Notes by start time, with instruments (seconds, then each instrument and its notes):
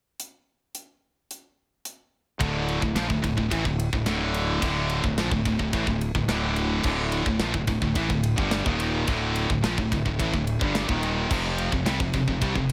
0.20 closed hi-hat
0.75 closed hi-hat
1.31 closed hi-hat
1.85 closed hi-hat
2.40 fingered electric bass D1, distorted electric guitar D2 A2 D3, kick, ride
2.68 ride
2.82 fingered electric bass D1, distorted electric guitar D2 A2, kick
2.95 fingered electric bass A#1, distorted electric guitar A#2 F3, snare, ride
3.10 fingered electric bass D1, distorted electric guitar D2 A2, kick
3.23 fingered electric bass D1, distorted electric guitar D2 A2, kick, ride
3.38 fingered electric bass D1, distorted electric guitar D2 A2, kick
3.51 fingered electric bass A1, distorted electric guitar A2 E3, kick, ride
3.65 fingered electric bass D1, distorted electric guitar D2 A2, kick
3.80 ride
3.93 fingered electric bass D1, distorted electric guitar D2 A2, kick
4.06 fingered electric bass D1, distorted electric guitar D2 A2 D3, snare, ride
4.34 ride
4.61 fingered electric bass D1, distorted electric guitar D2 A2 D3, kick, ride
4.90 ride
5.04 fingered electric bass D1, distorted electric guitar D2 A2, kick
5.17 fingered electric bass A#1, distorted electric guitar A#2 F3, snare, ride
5.31 fingered electric bass D1, distorted electric guitar D2 A2, kick
5.45 fingered electric bass D1, distorted electric guitar D2 A2, kick, ride
5.59 fingered electric bass D1, distorted electric guitar D2 A2, kick
5.73 fingered electric bass A1, distorted electric guitar A2 E3, kick, ride
5.87 fingered electric bass D1, distorted electric guitar D2 A2, kick
6.01 ride
6.15 fingered electric bass D1, distorted electric guitar D2 A2, kick
6.28 fingered electric bass D1, distorted electric guitar D2 A2 D3, snare, ride
6.56 ride
6.83 fingered electric bass D1, distorted electric guitar D2 A2 D3, kick, crash
7.12 ride
7.26 fingered electric bass D1, distorted electric guitar D2 A2, kick
7.40 fingered electric bass A#1, distorted electric guitar A#2 F3, snare, ride
7.54 fingered electric bass D1, distorted electric guitar D2 A2, kick
7.67 fingered electric bass D1, distorted electric guitar D2 A2, kick, ride
7.82 fingered electric bass D1, distorted electric guitar D2 A2, kick
7.95 fingered electric bass A1, distorted electric guitar A2 E3, kick, ride
8.10 fingered electric bass D1, distorted electric guitar D2 A2, kick
8.23 ride
8.38 fingered electric bass G1, distorted electric guitar G2 D3 G3, kick
8.51 snare, ride
8.66 fingered electric bass D#1, distorted electric guitar D#2 A#2 D#3, kick
8.80 ride
9.07 fingered electric bass D1, distorted electric guitar D2 A2 D3, kick, ride
9.36 ride
9.50 fingered electric bass D1, distorted electric guitar D2 A2, kick
9.62 fingered electric bass A#1, distorted electric guitar A#2 F3, snare, ride
9.77 fingered electric bass D1, distorted electric guitar D2 A2, kick
9.92 fingered electric bass D1, distorted electric guitar D2 A2, kick, ride
10.05 fingered electric bass D1, distorted electric guitar D2 A2, kick
10.19 fingered electric bass A1, distorted electric guitar A2 E3, kick, ride
10.33 fingered electric bass D1, distorted electric guitar D2 A2, kick
10.47 ride
10.59 fingered electric bass G1, distorted electric guitar G2 D3 G3, kick
10.75 snare, ride
10.88 fingered electric bass D#1, distorted electric guitar D#2 A#2 D#3, kick
11.03 ride
11.30 fingered electric bass F1, distorted electric guitar F2 C3 F3, kick, crash
11.58 ride
11.71 fingered electric bass F1, distorted electric guitar F2 C3, kick
11.86 fingered electric bass C2, distorted electric guitar C3 G3, snare, ride
12.00 fingered electric bass F1, distorted electric guitar F2 C3, kick
12.13 fingered electric bass F1, distorted electric guitar F2 C3, kick, ride
12.28 fingered electric bass F1, distorted electric guitar F2 C3, kick
12.42 fingered electric bass C2, distorted electric guitar C3 G3, kick, ride
12.55 fingered electric bass F1, distorted electric guitar F2 C3, kick